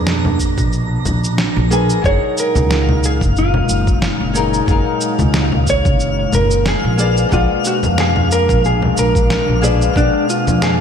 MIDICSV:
0, 0, Header, 1, 7, 480
1, 0, Start_track
1, 0, Tempo, 659341
1, 1489, Time_signature, 4, 2, 24, 8
1, 7867, End_track
2, 0, Start_track
2, 0, Title_t, "Synth texture"
2, 0, Program_c, 0, 99
2, 0, Note_on_c, 0, 82, 83
2, 1487, Note_on_c, 0, 77, 87
2, 1496, Note_off_c, 0, 82, 0
2, 7867, Note_off_c, 0, 77, 0
2, 7867, End_track
3, 0, Start_track
3, 0, Title_t, "Clean electric guitar"
3, 0, Program_c, 1, 27
3, 1498, Note_on_c, 1, 73, 98
3, 1741, Note_off_c, 1, 73, 0
3, 1745, Note_on_c, 1, 70, 98
3, 2225, Note_on_c, 1, 68, 85
3, 2232, Note_off_c, 1, 70, 0
3, 2288, Note_off_c, 1, 68, 0
3, 2465, Note_on_c, 1, 65, 79
3, 2908, Note_off_c, 1, 65, 0
3, 4149, Note_on_c, 1, 73, 98
3, 4618, Note_off_c, 1, 73, 0
3, 4621, Note_on_c, 1, 70, 92
3, 4839, Note_off_c, 1, 70, 0
3, 4866, Note_on_c, 1, 68, 102
3, 5205, Note_off_c, 1, 68, 0
3, 5340, Note_on_c, 1, 65, 89
3, 5582, Note_off_c, 1, 65, 0
3, 5585, Note_on_c, 1, 66, 91
3, 5647, Note_off_c, 1, 66, 0
3, 5826, Note_on_c, 1, 68, 93
3, 6042, Note_off_c, 1, 68, 0
3, 6060, Note_on_c, 1, 70, 90
3, 6300, Note_off_c, 1, 70, 0
3, 6303, Note_on_c, 1, 68, 84
3, 6541, Note_off_c, 1, 68, 0
3, 6544, Note_on_c, 1, 70, 82
3, 6988, Note_off_c, 1, 70, 0
3, 7258, Note_on_c, 1, 62, 78
3, 7495, Note_off_c, 1, 62, 0
3, 7498, Note_on_c, 1, 65, 83
3, 7717, Note_off_c, 1, 65, 0
3, 7741, Note_on_c, 1, 68, 93
3, 7867, Note_off_c, 1, 68, 0
3, 7867, End_track
4, 0, Start_track
4, 0, Title_t, "Nylon-string guitar"
4, 0, Program_c, 2, 24
4, 0, Note_on_c, 2, 58, 81
4, 0, Note_on_c, 2, 68, 77
4, 0, Note_on_c, 2, 71, 75
4, 0, Note_on_c, 2, 74, 90
4, 1215, Note_off_c, 2, 58, 0
4, 1221, Note_off_c, 2, 68, 0
4, 1227, Note_off_c, 2, 71, 0
4, 1232, Note_off_c, 2, 74, 0
4, 1241, Note_on_c, 2, 58, 78
4, 1244, Note_on_c, 2, 68, 69
4, 1251, Note_on_c, 2, 71, 76
4, 1258, Note_on_c, 2, 80, 85
4, 1460, Note_off_c, 2, 58, 0
4, 1461, Note_off_c, 2, 68, 0
4, 1465, Note_off_c, 2, 71, 0
4, 1468, Note_off_c, 2, 80, 0
4, 1468, Note_on_c, 2, 54, 83
4, 1482, Note_on_c, 2, 63, 73
4, 1494, Note_on_c, 2, 68, 74
4, 1505, Note_on_c, 2, 70, 86
4, 3133, Note_off_c, 2, 54, 0
4, 3140, Note_off_c, 2, 63, 0
4, 3146, Note_off_c, 2, 68, 0
4, 3151, Note_off_c, 2, 70, 0
4, 3155, Note_on_c, 2, 54, 83
4, 3162, Note_on_c, 2, 63, 77
4, 3167, Note_on_c, 2, 68, 70
4, 3174, Note_on_c, 2, 70, 89
4, 3377, Note_off_c, 2, 54, 0
4, 3380, Note_off_c, 2, 63, 0
4, 3383, Note_off_c, 2, 68, 0
4, 3386, Note_off_c, 2, 70, 0
4, 3391, Note_on_c, 2, 54, 82
4, 3404, Note_on_c, 2, 63, 76
4, 3415, Note_on_c, 2, 68, 78
4, 3426, Note_on_c, 2, 70, 94
4, 5055, Note_off_c, 2, 54, 0
4, 5061, Note_off_c, 2, 63, 0
4, 5067, Note_off_c, 2, 68, 0
4, 5072, Note_off_c, 2, 70, 0
4, 5076, Note_on_c, 2, 58, 82
4, 5082, Note_on_c, 2, 68, 74
4, 5088, Note_on_c, 2, 71, 74
4, 5093, Note_on_c, 2, 74, 92
4, 5297, Note_off_c, 2, 58, 0
4, 5301, Note_off_c, 2, 68, 0
4, 5302, Note_off_c, 2, 71, 0
4, 5306, Note_off_c, 2, 74, 0
4, 5307, Note_on_c, 2, 58, 91
4, 5319, Note_on_c, 2, 68, 77
4, 5331, Note_on_c, 2, 59, 77
4, 5341, Note_on_c, 2, 74, 93
4, 6972, Note_off_c, 2, 58, 0
4, 6979, Note_off_c, 2, 68, 0
4, 6984, Note_off_c, 2, 59, 0
4, 6990, Note_off_c, 2, 74, 0
4, 7000, Note_on_c, 2, 58, 87
4, 7006, Note_on_c, 2, 68, 73
4, 7010, Note_on_c, 2, 71, 71
4, 7017, Note_on_c, 2, 74, 96
4, 7219, Note_off_c, 2, 58, 0
4, 7222, Note_off_c, 2, 68, 0
4, 7224, Note_off_c, 2, 71, 0
4, 7227, Note_off_c, 2, 74, 0
4, 7232, Note_on_c, 2, 58, 85
4, 7244, Note_on_c, 2, 68, 75
4, 7255, Note_on_c, 2, 59, 76
4, 7267, Note_on_c, 2, 74, 93
4, 7867, Note_off_c, 2, 58, 0
4, 7867, Note_off_c, 2, 59, 0
4, 7867, Note_off_c, 2, 68, 0
4, 7867, Note_off_c, 2, 74, 0
4, 7867, End_track
5, 0, Start_track
5, 0, Title_t, "Analog synth pad"
5, 0, Program_c, 3, 89
5, 0, Note_on_c, 3, 47, 83
5, 0, Note_on_c, 3, 62, 92
5, 1462, Note_off_c, 3, 47, 0
5, 1462, Note_off_c, 3, 62, 0
5, 1487, Note_on_c, 3, 56, 69
5, 1487, Note_on_c, 3, 63, 90
5, 1488, Note_on_c, 3, 46, 81
5, 5059, Note_off_c, 3, 63, 0
5, 5060, Note_off_c, 3, 46, 0
5, 5088, Note_on_c, 3, 47, 89
5, 5090, Note_on_c, 3, 62, 93
5, 7867, Note_off_c, 3, 47, 0
5, 7867, Note_off_c, 3, 56, 0
5, 7867, Note_off_c, 3, 62, 0
5, 7867, End_track
6, 0, Start_track
6, 0, Title_t, "Upright bass"
6, 0, Program_c, 4, 32
6, 0, Note_on_c, 4, 41, 71
6, 418, Note_on_c, 4, 34, 84
6, 429, Note_off_c, 4, 41, 0
6, 701, Note_off_c, 4, 34, 0
6, 767, Note_on_c, 4, 34, 69
6, 1058, Note_off_c, 4, 34, 0
6, 1139, Note_on_c, 4, 34, 89
6, 1421, Note_off_c, 4, 34, 0
6, 1486, Note_on_c, 4, 30, 92
6, 1569, Note_off_c, 4, 30, 0
6, 1860, Note_on_c, 4, 37, 79
6, 2340, Note_on_c, 4, 30, 78
6, 2351, Note_off_c, 4, 37, 0
6, 2621, Note_off_c, 4, 30, 0
6, 2686, Note_on_c, 4, 30, 74
6, 2978, Note_off_c, 4, 30, 0
6, 3061, Note_on_c, 4, 30, 80
6, 3342, Note_off_c, 4, 30, 0
6, 3405, Note_on_c, 4, 30, 91
6, 3488, Note_off_c, 4, 30, 0
6, 3779, Note_on_c, 4, 37, 83
6, 4261, Note_on_c, 4, 30, 82
6, 4272, Note_off_c, 4, 37, 0
6, 4542, Note_off_c, 4, 30, 0
6, 4609, Note_on_c, 4, 30, 76
6, 4899, Note_off_c, 4, 30, 0
6, 4983, Note_on_c, 4, 34, 81
6, 5263, Note_off_c, 4, 34, 0
6, 5330, Note_on_c, 4, 34, 100
6, 5411, Note_off_c, 4, 34, 0
6, 5704, Note_on_c, 4, 41, 79
6, 6183, Note_on_c, 4, 34, 86
6, 6194, Note_off_c, 4, 41, 0
6, 6463, Note_off_c, 4, 34, 0
6, 6531, Note_on_c, 4, 34, 72
6, 6820, Note_off_c, 4, 34, 0
6, 6902, Note_on_c, 4, 34, 81
6, 7182, Note_off_c, 4, 34, 0
6, 7250, Note_on_c, 4, 34, 92
6, 7331, Note_off_c, 4, 34, 0
6, 7623, Note_on_c, 4, 41, 78
6, 7867, Note_off_c, 4, 41, 0
6, 7867, End_track
7, 0, Start_track
7, 0, Title_t, "Drums"
7, 49, Note_on_c, 9, 38, 96
7, 51, Note_on_c, 9, 69, 30
7, 121, Note_off_c, 9, 38, 0
7, 124, Note_off_c, 9, 69, 0
7, 180, Note_on_c, 9, 64, 79
7, 253, Note_off_c, 9, 64, 0
7, 288, Note_on_c, 9, 36, 56
7, 291, Note_on_c, 9, 69, 67
7, 361, Note_off_c, 9, 36, 0
7, 364, Note_off_c, 9, 69, 0
7, 420, Note_on_c, 9, 36, 93
7, 422, Note_on_c, 9, 69, 40
7, 493, Note_off_c, 9, 36, 0
7, 495, Note_off_c, 9, 69, 0
7, 529, Note_on_c, 9, 69, 31
7, 602, Note_off_c, 9, 69, 0
7, 768, Note_on_c, 9, 64, 73
7, 771, Note_on_c, 9, 69, 69
7, 841, Note_off_c, 9, 64, 0
7, 844, Note_off_c, 9, 69, 0
7, 904, Note_on_c, 9, 69, 42
7, 977, Note_off_c, 9, 69, 0
7, 1006, Note_on_c, 9, 38, 90
7, 1009, Note_on_c, 9, 69, 28
7, 1079, Note_off_c, 9, 38, 0
7, 1082, Note_off_c, 9, 69, 0
7, 1250, Note_on_c, 9, 69, 65
7, 1323, Note_off_c, 9, 69, 0
7, 1382, Note_on_c, 9, 69, 43
7, 1455, Note_off_c, 9, 69, 0
7, 1487, Note_on_c, 9, 36, 105
7, 1492, Note_on_c, 9, 69, 30
7, 1560, Note_off_c, 9, 36, 0
7, 1565, Note_off_c, 9, 69, 0
7, 1731, Note_on_c, 9, 69, 75
7, 1804, Note_off_c, 9, 69, 0
7, 1860, Note_on_c, 9, 64, 77
7, 1863, Note_on_c, 9, 69, 42
7, 1933, Note_off_c, 9, 64, 0
7, 1936, Note_off_c, 9, 69, 0
7, 1970, Note_on_c, 9, 38, 99
7, 1973, Note_on_c, 9, 69, 29
7, 2043, Note_off_c, 9, 38, 0
7, 2046, Note_off_c, 9, 69, 0
7, 2102, Note_on_c, 9, 64, 77
7, 2175, Note_off_c, 9, 64, 0
7, 2211, Note_on_c, 9, 69, 73
7, 2284, Note_off_c, 9, 69, 0
7, 2340, Note_on_c, 9, 36, 97
7, 2345, Note_on_c, 9, 69, 42
7, 2412, Note_off_c, 9, 36, 0
7, 2417, Note_off_c, 9, 69, 0
7, 2449, Note_on_c, 9, 69, 31
7, 2522, Note_off_c, 9, 69, 0
7, 2576, Note_on_c, 9, 64, 72
7, 2649, Note_off_c, 9, 64, 0
7, 2686, Note_on_c, 9, 69, 71
7, 2759, Note_off_c, 9, 69, 0
7, 2820, Note_on_c, 9, 36, 101
7, 2822, Note_on_c, 9, 69, 41
7, 2893, Note_off_c, 9, 36, 0
7, 2894, Note_off_c, 9, 69, 0
7, 2927, Note_on_c, 9, 38, 100
7, 2930, Note_on_c, 9, 69, 30
7, 3000, Note_off_c, 9, 38, 0
7, 3003, Note_off_c, 9, 69, 0
7, 3170, Note_on_c, 9, 69, 74
7, 3242, Note_off_c, 9, 69, 0
7, 3303, Note_on_c, 9, 69, 43
7, 3376, Note_off_c, 9, 69, 0
7, 3407, Note_on_c, 9, 36, 110
7, 3408, Note_on_c, 9, 69, 31
7, 3480, Note_off_c, 9, 36, 0
7, 3481, Note_off_c, 9, 69, 0
7, 3648, Note_on_c, 9, 69, 80
7, 3721, Note_off_c, 9, 69, 0
7, 3778, Note_on_c, 9, 64, 73
7, 3781, Note_on_c, 9, 69, 43
7, 3851, Note_off_c, 9, 64, 0
7, 3853, Note_off_c, 9, 69, 0
7, 3886, Note_on_c, 9, 38, 100
7, 3889, Note_on_c, 9, 69, 31
7, 3959, Note_off_c, 9, 38, 0
7, 3962, Note_off_c, 9, 69, 0
7, 4020, Note_on_c, 9, 64, 73
7, 4092, Note_off_c, 9, 64, 0
7, 4128, Note_on_c, 9, 36, 60
7, 4130, Note_on_c, 9, 69, 77
7, 4201, Note_off_c, 9, 36, 0
7, 4203, Note_off_c, 9, 69, 0
7, 4261, Note_on_c, 9, 36, 102
7, 4262, Note_on_c, 9, 69, 44
7, 4333, Note_off_c, 9, 36, 0
7, 4335, Note_off_c, 9, 69, 0
7, 4368, Note_on_c, 9, 69, 35
7, 4441, Note_off_c, 9, 69, 0
7, 4606, Note_on_c, 9, 64, 68
7, 4609, Note_on_c, 9, 69, 76
7, 4679, Note_off_c, 9, 64, 0
7, 4681, Note_off_c, 9, 69, 0
7, 4740, Note_on_c, 9, 69, 48
7, 4813, Note_off_c, 9, 69, 0
7, 4846, Note_on_c, 9, 38, 98
7, 4849, Note_on_c, 9, 69, 30
7, 4919, Note_off_c, 9, 38, 0
7, 4922, Note_off_c, 9, 69, 0
7, 5088, Note_on_c, 9, 69, 73
7, 5161, Note_off_c, 9, 69, 0
7, 5221, Note_on_c, 9, 69, 46
7, 5294, Note_off_c, 9, 69, 0
7, 5330, Note_on_c, 9, 36, 106
7, 5330, Note_on_c, 9, 69, 30
7, 5402, Note_off_c, 9, 36, 0
7, 5403, Note_off_c, 9, 69, 0
7, 5568, Note_on_c, 9, 69, 80
7, 5641, Note_off_c, 9, 69, 0
7, 5701, Note_on_c, 9, 64, 72
7, 5703, Note_on_c, 9, 69, 45
7, 5773, Note_off_c, 9, 64, 0
7, 5776, Note_off_c, 9, 69, 0
7, 5810, Note_on_c, 9, 38, 101
7, 5813, Note_on_c, 9, 69, 33
7, 5883, Note_off_c, 9, 38, 0
7, 5885, Note_off_c, 9, 69, 0
7, 5940, Note_on_c, 9, 64, 75
7, 6013, Note_off_c, 9, 64, 0
7, 6054, Note_on_c, 9, 69, 80
7, 6127, Note_off_c, 9, 69, 0
7, 6182, Note_on_c, 9, 36, 102
7, 6186, Note_on_c, 9, 69, 42
7, 6255, Note_off_c, 9, 36, 0
7, 6259, Note_off_c, 9, 69, 0
7, 6294, Note_on_c, 9, 69, 33
7, 6367, Note_off_c, 9, 69, 0
7, 6424, Note_on_c, 9, 64, 73
7, 6497, Note_off_c, 9, 64, 0
7, 6533, Note_on_c, 9, 69, 77
7, 6605, Note_off_c, 9, 69, 0
7, 6662, Note_on_c, 9, 36, 101
7, 6668, Note_on_c, 9, 69, 45
7, 6735, Note_off_c, 9, 36, 0
7, 6741, Note_off_c, 9, 69, 0
7, 6772, Note_on_c, 9, 38, 94
7, 6775, Note_on_c, 9, 69, 30
7, 6845, Note_off_c, 9, 38, 0
7, 6848, Note_off_c, 9, 69, 0
7, 7017, Note_on_c, 9, 69, 73
7, 7090, Note_off_c, 9, 69, 0
7, 7147, Note_on_c, 9, 69, 46
7, 7220, Note_off_c, 9, 69, 0
7, 7250, Note_on_c, 9, 36, 108
7, 7258, Note_on_c, 9, 69, 34
7, 7323, Note_off_c, 9, 36, 0
7, 7331, Note_off_c, 9, 69, 0
7, 7496, Note_on_c, 9, 69, 76
7, 7569, Note_off_c, 9, 69, 0
7, 7625, Note_on_c, 9, 64, 73
7, 7628, Note_on_c, 9, 69, 43
7, 7698, Note_off_c, 9, 64, 0
7, 7701, Note_off_c, 9, 69, 0
7, 7732, Note_on_c, 9, 38, 92
7, 7735, Note_on_c, 9, 69, 33
7, 7805, Note_off_c, 9, 38, 0
7, 7808, Note_off_c, 9, 69, 0
7, 7867, End_track
0, 0, End_of_file